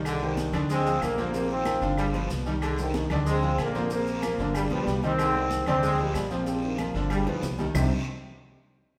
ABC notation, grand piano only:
X:1
M:4/4
L:1/8
Q:1/4=187
K:Cm
V:1 name="Grand piano"
[E,Ee] [G,Gc]2 [D,Dd]2 [F,FA]2 [C,Cc] | [C,Cc]2 [F,FB] [D,DF]2 [=B,,=B,=B]2 [E,Ee]- | [E,Ee] [G,Gc]2 [D,Dd]2 [F,FA]2 [C,Cc] | [C,Cc]2 [F,FB] [D,DF]2 [=B,,=B,=B]2 [E,Ee]- |
[E,Ee] [G,Gc]2 [D,Dd]2 [F,Fc]2 [C,Cc] | [C,Cc]2 [F,FB] [D,DF]2 [=B,,=B,=B]2 [E,Ee] | [C,G,CDEG] z6 z |]